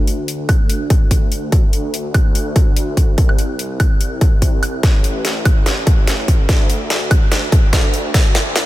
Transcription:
Already playing: detuned saw bass D2
0.07 closed hi-hat
0.28 closed hi-hat
0.49 kick, closed hi-hat, high woodblock
0.69 closed hi-hat
0.90 kick, closed hi-hat
1.11 kick, closed hi-hat
1.32 closed hi-hat
1.52 detuned saw bass D2, kick, closed hi-hat
1.73 closed hi-hat
1.94 closed hi-hat
2.14 kick, closed hi-hat, high woodblock
2.35 closed hi-hat
2.56 kick, closed hi-hat
2.76 closed hi-hat
2.97 kick, closed hi-hat
3.18 detuned saw bass C2, kick, closed hi-hat
3.29 high woodblock
3.38 closed hi-hat
3.59 closed hi-hat
3.80 kick, closed hi-hat, high woodblock
4.01 closed hi-hat
4.21 kick, closed hi-hat
4.42 kick, closed hi-hat
4.63 closed hi-hat, high woodblock
4.83 detuned saw bass A1, kick, snare, closed hi-hat
5.04 closed hi-hat
5.25 snare, closed hi-hat
5.45 kick, closed hi-hat, high woodblock
5.66 snare, closed hi-hat
5.87 kick, closed hi-hat
6.07 snare, closed hi-hat
6.28 kick, closed hi-hat
6.49 detuned saw bass D2, kick, snare, closed hi-hat
6.70 closed hi-hat
6.90 snare, closed hi-hat
7.11 kick, closed hi-hat, high woodblock
7.32 snare, closed hi-hat
7.52 kick, closed hi-hat
7.73 kick, snare, closed hi-hat
7.94 closed hi-hat
8.14 detuned saw bass D2, kick, snare, closed hi-hat
8.35 snare, closed hi-hat
8.56 snare, closed hi-hat

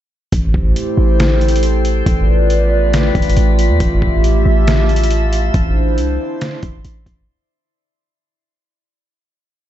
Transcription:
0.32 808-style bass A1, analog synth pad A3 E4 G4 C5, synth texture A4 G5 C6, kick, closed hi-hat
0.54 808-style bass A1, kick
0.76 closed hi-hat
0.97 808-style bass A1
1.20 snare, closed hi-hat
1.41 closed hi-hat
1.48 closed hi-hat
1.56 closed hi-hat
1.63 closed hi-hat
1.85 closed hi-hat
2.06 808-style bass A1, analog synth pad A3 F4 B4 D5, synth texture G4 F5 B5, kick, closed hi-hat
2.50 closed hi-hat
2.93 snare, closed hi-hat
3.15 808-style bass A1, kick, closed hi-hat
3.22 closed hi-hat
3.30 closed hi-hat
3.37 808-style bass A1, closed hi-hat
3.59 closed hi-hat
3.69 808-style bass E2
3.80 808-style bass A1, synth texture F4 E5 A5, analog synth pad G4 E5, kick, closed hi-hat
4.02 808-style bass A1, kick
4.24 closed hi-hat
4.45 808-style bass A1
4.67 snare, closed hi-hat
4.89 closed hi-hat
4.96 closed hi-hat
5.04 closed hi-hat
5.11 closed hi-hat
5.33 closed hi-hat
5.54 808-style bass A1, analog synth pad D4 E4 C5, synth texture E4 D5 C6, kick, closed hi-hat
5.98 808-style bass C2, closed hi-hat
6.41 snare, closed hi-hat
6.63 808-style bass A1, kick, closed hi-hat
6.85 808-style bass A1, closed hi-hat
7.06 808-style bass A1, kick, closed hi-hat

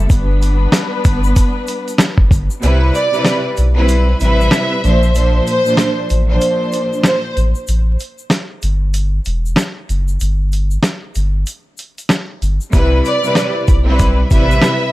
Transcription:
Already playing: string section G3
0.10 sub bass G1, string section B3 D4 B4, kick, closed hi-hat, shaker
0.42 closed hi-hat, shaker
0.72 snare, closed hi-hat, shaker
1.05 sub bass G1, kick, closed hi-hat, shaker
1.24 shaker
1.36 kick, closed hi-hat, shaker
1.67 closed hi-hat, shaker
1.88 closed hi-hat, shaker
1.98 snare, closed hi-hat, shaker
2.18 kick
2.31 sub bass G1, kick, closed hi-hat, shaker
2.50 shaker
2.61 sub bass C2, string section C3 G3 E4 B4, closed hi-hat, shaker
2.95 violin section D5, closed hi-hat, shaker
3.12 string section C3 G3 E4 B4, shaker
3.25 snare, closed hi-hat, shaker
3.57 sub bass B1, closed hi-hat, shaker
3.74 string section G3 C4 E4 B4
3.89 closed hi-hat, shaker
4.19 sub bass A1, string section C3 G3 E4 B4, violin section E5, closed hi-hat, shaker
4.41 shaker
4.51 snare, closed hi-hat, shaker
4.83 sub bass A#1, string section A#2 F3 D4 C5, closed hi-hat, shaker
5.03 shaker
5.14 string section A#2 F3 D4 C5, closed hi-hat, shaker
5.47 violin section C5, closed hi-hat, shaker
5.64 string section A#2 F3 D4 C5, shaker
5.77 snare, closed hi-hat, shaker
6.10 sub bass A1, closed hi-hat, shaker
6.28 string section A#2 F3 D4 C5
6.41 closed hi-hat, shaker
6.72 closed hi-hat, shaker
6.93 shaker
7.04 violin section C5, snare, closed hi-hat, shaker
7.37 sub bass A1, closed hi-hat, shaker
7.55 shaker
7.67 sub bass A1, closed hi-hat, shaker
8.00 closed hi-hat, shaker
8.18 shaker
8.30 snare, closed hi-hat, shaker
8.62 sub bass G1, closed hi-hat, shaker
8.94 closed hi-hat, shaker
9.25 sub bass E1, closed hi-hat, shaker
9.46 shaker
9.56 snare, closed hi-hat, shaker
9.89 sub bass F#1, closed hi-hat, shaker
10.08 shaker
10.20 sub bass G1, closed hi-hat, shaker
10.52 closed hi-hat, shaker
10.71 shaker
10.83 snare, closed hi-hat, shaker
11.15 sub bass G1, closed hi-hat, shaker
11.46 closed hi-hat, shaker
11.78 closed hi-hat, shaker
11.98 closed hi-hat, shaker
12.09 snare, closed hi-hat, shaker
12.42 sub bass G1, closed hi-hat, shaker
12.61 shaker
12.72 sub bass C2, string section C3 G3 E4 B4, kick, closed hi-hat, shaker
13.05 violin section D5, closed hi-hat, shaker
13.22 string section C3 G3 E4 B4, shaker
13.35 snare, closed hi-hat, shaker
13.68 sub bass B1, kick, closed hi-hat, shaker
13.85 string section G3 C4 E4 B4
13.99 kick, closed hi-hat, shaker
14.29 sub bass A1, string section C3 G3 E4 B4, violin section E5, kick, closed hi-hat, shaker
14.51 shaker
14.62 snare, closed hi-hat, shaker

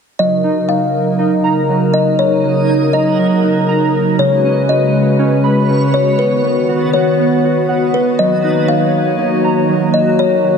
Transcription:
0.19 analog synth pad C#3 F#3 D#4 A#4, synth keys F#3, synth texture A#3 F#4 D#5, kalimba D#5
0.44 synth keys D#4
0.69 kalimba F5
1.19 synth keys D#4
1.44 synth keys A#5
1.69 synth keys F#3
1.94 kalimba D#5
2.19 kalimba C#5
2.44 synth keys F#3
2.68 synth keys D#4
2.93 kalimba D#5, synth keys A#5
3.18 synth keys F#3
3.44 synth keys D#4
3.68 synth keys A#5
4.19 synth keys C#3, analog synth pad C#3 G#3 F#4 B4, synth texture B3 F#4 C#5, kalimba C#5
4.44 synth keys C#4
4.69 kalimba D#5
5.19 synth keys C#4
5.44 synth keys B5
5.69 synth keys C#3
5.94 kalimba C#5
6.19 analog synth pad D#3 B3, kalimba B4, synth texture D#5
6.44 synth keys B3
6.69 synth keys F#4
6.93 kalimba C#5, synth keys F#5
7.19 synth keys B3
7.45 synth keys F#4
7.69 synth keys F#5
7.94 kalimba B4
8.19 synth keys F#3, synth texture A#3, analog synth pad A#3 C#5, kalimba D#5
8.44 synth keys D#4
8.68 kalimba F5
9.19 synth keys D#4
9.44 synth keys A#5
9.69 synth keys F#3
9.94 kalimba D#5
10.19 kalimba C#5, analog synth pad D#5
10.44 synth keys F#3

